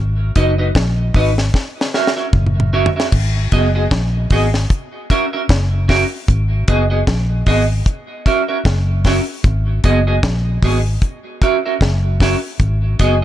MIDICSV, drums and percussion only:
0, 0, Header, 1, 2, 480
1, 0, Start_track
1, 0, Key_signature, 5, "minor"
1, 0, Tempo, 789474
1, 1900, Time_signature, 4, 2, 24, 8
1, 8052, End_track
2, 0, Start_track
2, 0, Title_t, "Drums"
2, 216, Note_on_c, 9, 42, 75
2, 218, Note_on_c, 9, 36, 89
2, 277, Note_off_c, 9, 42, 0
2, 279, Note_off_c, 9, 36, 0
2, 457, Note_on_c, 9, 36, 106
2, 463, Note_on_c, 9, 38, 127
2, 518, Note_off_c, 9, 36, 0
2, 523, Note_off_c, 9, 38, 0
2, 695, Note_on_c, 9, 46, 70
2, 696, Note_on_c, 9, 36, 100
2, 756, Note_off_c, 9, 46, 0
2, 757, Note_off_c, 9, 36, 0
2, 840, Note_on_c, 9, 38, 64
2, 901, Note_off_c, 9, 38, 0
2, 936, Note_on_c, 9, 36, 101
2, 942, Note_on_c, 9, 38, 58
2, 997, Note_off_c, 9, 36, 0
2, 1003, Note_off_c, 9, 38, 0
2, 1101, Note_on_c, 9, 38, 79
2, 1162, Note_off_c, 9, 38, 0
2, 1182, Note_on_c, 9, 38, 67
2, 1243, Note_off_c, 9, 38, 0
2, 1261, Note_on_c, 9, 38, 82
2, 1322, Note_off_c, 9, 38, 0
2, 1417, Note_on_c, 9, 36, 117
2, 1418, Note_on_c, 9, 45, 86
2, 1478, Note_off_c, 9, 36, 0
2, 1478, Note_off_c, 9, 45, 0
2, 1499, Note_on_c, 9, 45, 72
2, 1559, Note_off_c, 9, 45, 0
2, 1580, Note_on_c, 9, 45, 100
2, 1641, Note_off_c, 9, 45, 0
2, 1739, Note_on_c, 9, 43, 120
2, 1800, Note_off_c, 9, 43, 0
2, 1823, Note_on_c, 9, 38, 98
2, 1883, Note_off_c, 9, 38, 0
2, 1898, Note_on_c, 9, 49, 105
2, 1899, Note_on_c, 9, 36, 112
2, 1959, Note_off_c, 9, 49, 0
2, 1960, Note_off_c, 9, 36, 0
2, 2139, Note_on_c, 9, 42, 84
2, 2141, Note_on_c, 9, 36, 91
2, 2200, Note_off_c, 9, 42, 0
2, 2202, Note_off_c, 9, 36, 0
2, 2379, Note_on_c, 9, 36, 116
2, 2382, Note_on_c, 9, 38, 121
2, 2440, Note_off_c, 9, 36, 0
2, 2443, Note_off_c, 9, 38, 0
2, 2615, Note_on_c, 9, 46, 71
2, 2618, Note_on_c, 9, 36, 104
2, 2676, Note_off_c, 9, 46, 0
2, 2679, Note_off_c, 9, 36, 0
2, 2761, Note_on_c, 9, 38, 61
2, 2821, Note_off_c, 9, 38, 0
2, 2859, Note_on_c, 9, 36, 119
2, 2861, Note_on_c, 9, 44, 71
2, 2920, Note_off_c, 9, 36, 0
2, 2922, Note_off_c, 9, 44, 0
2, 3101, Note_on_c, 9, 36, 89
2, 3104, Note_on_c, 9, 42, 73
2, 3162, Note_off_c, 9, 36, 0
2, 3165, Note_off_c, 9, 42, 0
2, 3340, Note_on_c, 9, 36, 116
2, 3346, Note_on_c, 9, 38, 107
2, 3401, Note_off_c, 9, 36, 0
2, 3407, Note_off_c, 9, 38, 0
2, 3582, Note_on_c, 9, 36, 86
2, 3582, Note_on_c, 9, 46, 73
2, 3588, Note_on_c, 9, 38, 71
2, 3642, Note_off_c, 9, 36, 0
2, 3642, Note_off_c, 9, 46, 0
2, 3649, Note_off_c, 9, 38, 0
2, 3821, Note_on_c, 9, 36, 113
2, 3822, Note_on_c, 9, 44, 64
2, 3881, Note_off_c, 9, 36, 0
2, 3882, Note_off_c, 9, 44, 0
2, 4060, Note_on_c, 9, 42, 74
2, 4062, Note_on_c, 9, 36, 99
2, 4121, Note_off_c, 9, 42, 0
2, 4123, Note_off_c, 9, 36, 0
2, 4300, Note_on_c, 9, 36, 116
2, 4304, Note_on_c, 9, 38, 127
2, 4361, Note_off_c, 9, 36, 0
2, 4365, Note_off_c, 9, 38, 0
2, 4538, Note_on_c, 9, 46, 76
2, 4540, Note_on_c, 9, 36, 95
2, 4598, Note_off_c, 9, 46, 0
2, 4601, Note_off_c, 9, 36, 0
2, 4779, Note_on_c, 9, 36, 109
2, 4779, Note_on_c, 9, 44, 66
2, 4840, Note_off_c, 9, 36, 0
2, 4840, Note_off_c, 9, 44, 0
2, 5021, Note_on_c, 9, 36, 94
2, 5023, Note_on_c, 9, 42, 74
2, 5082, Note_off_c, 9, 36, 0
2, 5084, Note_off_c, 9, 42, 0
2, 5260, Note_on_c, 9, 36, 127
2, 5266, Note_on_c, 9, 38, 103
2, 5321, Note_off_c, 9, 36, 0
2, 5327, Note_off_c, 9, 38, 0
2, 5499, Note_on_c, 9, 46, 77
2, 5501, Note_on_c, 9, 36, 90
2, 5506, Note_on_c, 9, 38, 70
2, 5560, Note_off_c, 9, 46, 0
2, 5562, Note_off_c, 9, 36, 0
2, 5567, Note_off_c, 9, 38, 0
2, 5739, Note_on_c, 9, 44, 70
2, 5741, Note_on_c, 9, 36, 122
2, 5800, Note_off_c, 9, 44, 0
2, 5802, Note_off_c, 9, 36, 0
2, 5981, Note_on_c, 9, 42, 78
2, 5983, Note_on_c, 9, 36, 89
2, 6042, Note_off_c, 9, 42, 0
2, 6044, Note_off_c, 9, 36, 0
2, 6221, Note_on_c, 9, 36, 118
2, 6224, Note_on_c, 9, 38, 125
2, 6281, Note_off_c, 9, 36, 0
2, 6284, Note_off_c, 9, 38, 0
2, 6460, Note_on_c, 9, 36, 103
2, 6460, Note_on_c, 9, 46, 75
2, 6521, Note_off_c, 9, 36, 0
2, 6521, Note_off_c, 9, 46, 0
2, 6699, Note_on_c, 9, 36, 100
2, 6700, Note_on_c, 9, 44, 65
2, 6760, Note_off_c, 9, 36, 0
2, 6761, Note_off_c, 9, 44, 0
2, 6941, Note_on_c, 9, 36, 102
2, 6942, Note_on_c, 9, 42, 74
2, 7002, Note_off_c, 9, 36, 0
2, 7003, Note_off_c, 9, 42, 0
2, 7180, Note_on_c, 9, 36, 113
2, 7187, Note_on_c, 9, 38, 105
2, 7241, Note_off_c, 9, 36, 0
2, 7248, Note_off_c, 9, 38, 0
2, 7419, Note_on_c, 9, 46, 75
2, 7420, Note_on_c, 9, 36, 93
2, 7426, Note_on_c, 9, 38, 65
2, 7480, Note_off_c, 9, 46, 0
2, 7481, Note_off_c, 9, 36, 0
2, 7487, Note_off_c, 9, 38, 0
2, 7658, Note_on_c, 9, 44, 69
2, 7659, Note_on_c, 9, 36, 106
2, 7718, Note_off_c, 9, 44, 0
2, 7720, Note_off_c, 9, 36, 0
2, 7900, Note_on_c, 9, 42, 79
2, 7902, Note_on_c, 9, 36, 97
2, 7961, Note_off_c, 9, 42, 0
2, 7962, Note_off_c, 9, 36, 0
2, 8052, End_track
0, 0, End_of_file